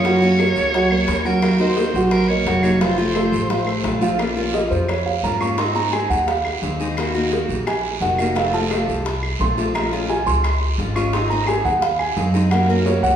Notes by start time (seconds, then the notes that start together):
Already playing: F#2 C#5
0.04 C#3 F#3 A#3 C#4 F#4 F#5, high bongo, long guiro
0.22 F#3 A#3 C#4 F#4
0.39 F#3 A#3 C#4 F#4 A#4 C#5, high bongo, short guiro, claves
0.56 C#2, high bongo, short guiro
0.74 F#3 F#4 F#5, muted steel-string acoustic guitar stroke, high bongo, long guiro
0.91 A#3 A#4 C#5, high bongo, claves
1.07 D#2 F#3 A#3 C#4 F#4, high bongo, low bongo, short guiro
1.25 F#3 A#3 C#4 F#4 A#4 F#5, high bongo, short guiro
1.42 D#3 A#3 D#4 F#4, high bongo, long guiro, claves
1.59 A#3 D#4 F#4 A#4 C5 D#5, high bongo
1.76 D#3 A#3 D#4 F#4, high bongo, short guiro
1.94 A#1 F#3 F#4 F#5, high bongo, short guiro
2.11 A#4, muted steel-string acoustic guitar stroke, high bongo, long guiro, claves
2.28 A#3 A#4 C#5 D#5
2.45 F1 D#3 F#3 A#3 D#4 F#4 F#5, high bongo, low bongo, short guiro
2.63 A#3 D#4 F#4 C#5, high bongo, short guiro, claves
2.81 C3 F3 A3 C4 F4 C5 F5, high bongo, long guiro
2.98 F3 A3 C4 F4
3.15 F3 A3 C4 F4 A4 C5, high bongo, short guiro, claves
3.32 A1, high bongo, short guiro
3.50 F3 F4 F5, muted steel-string acoustic guitar stroke, high bongo, long guiro
3.66 A3 A4 C5, high bongo, claves
3.84 A#1 F3 A3 C4 F4, high bongo, low bongo, short guiro
4.01 F3 A3 C4 F4 F5, high bongo, short guiro
4.19 F3 A#3 C#4 F4, high bongo, long guiro, claves
4.36 A#3 C#4 F4, high bongo
4.54 F3 A#3 C#4 F4 D#5, high bongo, short guiro
4.71 F2 C5, short guiro
4.88 C#5, muted steel-string acoustic guitar stroke, high bongo, long guiro, claves
5.06 F5, high bongo
5.23 G#2 F3 A#3 C#4 F4 A#5, high bongo, low bongo, short guiro
5.41 A#3 C#4 F4 C#6, high bongo, short guiro, claves
5.58 D#3 G#3 C4 D#4 G#4 C6, high bongo, long guiro
5.75 G#3 C4 D#4 G#4 A#5, high bongo
5.92 G#3 C4 D#4 G#4 G#5, high bongo, short guiro, claves
6.09 D#2 F#5, short guiro
6.27 F5, muted steel-string acoustic guitar stroke, high bongo, long guiro
6.45 high bongo, claves
6.62 D#2 G#3 C4 D#4 G#4, high bongo, low bongo, short guiro
6.80 G#3 C4 D#4 G#4, high bongo, short guiro
6.97 D#3 A#3 D#4 F#4, high bongo, long guiro, claves
7.14 A#3 D#4 F#4, high bongo
7.32 D#3 A#3 D#4 F#4, high bongo, short guiro
7.49 A#1, short guiro
7.67 G#5, muted steel-string acoustic guitar stroke, high bongo, long guiro, claves
7.85 high bongo
8.00 F1 D#3 A#3 D#4 F#4 F#5, high bongo, low bongo, short guiro
8.18 A#3 D#4 F#4, high bongo, short guiro, claves
8.35 C3 F3 A3 C4 F4 F5, high bongo, long guiro
8.53 F3 A3 C4 F4 A5, high bongo
8.71 F3 A3 C4 F4, high bongo, short guiro, claves
8.88 C2, short guiro
9.05 muted steel-string acoustic guitar stroke, high bongo, long guiro
9.23 high bongo, claves
9.39 A#1 F3 A3 C4 F4 C6, high bongo, low bongo, short guiro
9.57 F3 A3 C4 F4, high bongo, short guiro
9.74 F3 G#3 C#4 F4 A#5, high bongo, long guiro, claves
9.92 G#3 C#4 F4, high bongo
10.09 F3 G#3 C#4 F4 G#5, high bongo, short guiro
10.26 C#2 C6, short guiro
10.44 muted steel-string acoustic guitar stroke, high bongo, long guiro, claves
10.62 high bongo
10.78 G#1 F3 G#3 C#4 F4, high bongo, low bongo, short guiro
10.95 G#3 C#4 F4 C#6, high bongo, short guiro, claves
11.13 D#3 G#3 C4 D#4 G#4 C6, high bongo, long guiro
11.30 G#3 C4 D#4 G#4 A#5, high bongo
11.47 G#3 C4 D#4 G#4 G#5, high bongo, short guiro, claves
11.65 D#2 F#5, short guiro
11.82 F5, muted steel-string acoustic guitar stroke, high bongo, long guiro
11.99 G#5, high bongo, claves
12.17 F#2 G#3 C4 D#4 G#4, high bongo, low bongo, short guiro
12.34 G#3 C4 D#4 G#4, high bongo, short guiro
12.51 C#3 F#3 A#3 C#4 F#4 F#5, high bongo, long guiro, claves
12.68 F#3 A#3 C#4 F#4 A#4, high bongo
12.86 F#3 A#3 C#4 F#4 C#5, high bongo, short guiro
13.03 C#2 F#5, short guiro